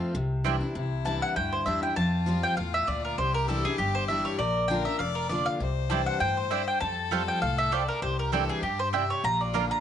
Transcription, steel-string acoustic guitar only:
0.00 0.12 F2 medium
0.00 0.13 F3 medium
0.00 0.13 A3 medium
0.00 0.14 C4 loud
0.00 0.14 F4 loud
0.15 0.73 C3 loud
0.44 0.61 E3 medium
0.44 0.61 G3 medium
0.44 0.61 D4 medium
0.44 0.59 E4 medium
0.61 0.75 D4 medium
0.61 0.74 E4 medium
0.75 1.33 C3 medium
1.05 1.34 E3 medium
1.05 1.35 G3 medium
1.05 1.35 D4 loud
1.05 1.35 E4 loud
1.36 1.94 G2 medium
1.66 1.82 E3 medium
1.66 1.82 G3 medium
1.66 1.83 D4 loud
1.66 1.81 E4 medium
1.82 1.97 D4 medium
1.82 1.96 E4 medium
1.96 2.54 F2 medium
2.26 2.56 F3 medium
2.26 2.56 G3 medium
2.26 2.56 C4 medium
2.26 2.57 F4 loud
2.57 2.86 A2 medium
2.88 3.17 A#2 medium
3.18 3.76 C3 medium
3.48 3.64 E3 medium
3.48 3.65 G3 medium
3.48 3.65 D4 loud
3.48 3.64 E4 loud
3.65 3.79 D4 medium
3.65 3.78 E4 medium
3.79 4.37 G2 medium
4.09 4.38 E3 medium
4.09 4.38 G3 medium
4.09 4.39 D4 medium
4.09 4.39 E4 medium
4.39 4.97 A#2 medium
4.69 4.85 D3 medium
4.69 4.86 A#3 medium
4.69 4.86 D4 medium
4.69 4.84 F4 loud
4.86 5.00 D4 soft
4.86 4.99 F4 medium
5.00 5.58 F2 medium
5.29 5.59 D3 medium
5.29 5.59 A#3 medium
5.29 5.60 D4 medium
5.29 5.60 F4 medium
5.60 6.18 C3 medium
5.90 6.19 E3 medium
5.90 6.20 G3 medium
5.90 6.20 D4 medium
5.90 6.20 E4 loud
6.21 6.50 A2 medium
6.51 6.80 G2 medium
6.81 7.39 F2 medium
7.11 7.40 F3 medium
7.11 7.41 G3 loud
7.11 7.41 C4 medium
7.11 7.41 F4 loud
7.42 7.71 A2 medium
7.72 8.01 A#2 medium
8.02 8.60 C3 medium
8.32 8.61 E3 medium
8.32 8.62 G3 loud
8.32 8.62 D4 medium
8.32 8.62 E4 loud
8.63 8.92 G2 medium
8.93 9.22 C3 medium
9.24 9.80 A#2 medium
9.53 9.80 D3 medium
9.53 9.80 A#3 medium
9.53 9.80 D4 medium
9.53 9.80 F4 loud

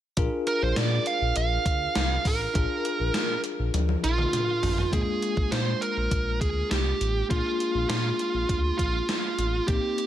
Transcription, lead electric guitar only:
0.47 0.63 A#4 medium
0.63 0.77 C5 medium
0.77 1.05 D5 medium
1.07 1.36 F5 medium
1.37 2.28 F5 loud
2.27 3.41 A#4 medium
4.04 4.96 F4 medium
4.93 5.54 G#4 medium
5.51 5.82 C5 medium
5.81 6.41 A#4 medium
6.41 6.70 G#4 medium
6.71 7.26 G4 medium
7.30 7.88 F4 medium
7.89 8.77 F4 medium
8.78 9.70 F4 medium
9.67 10.07 G4 medium

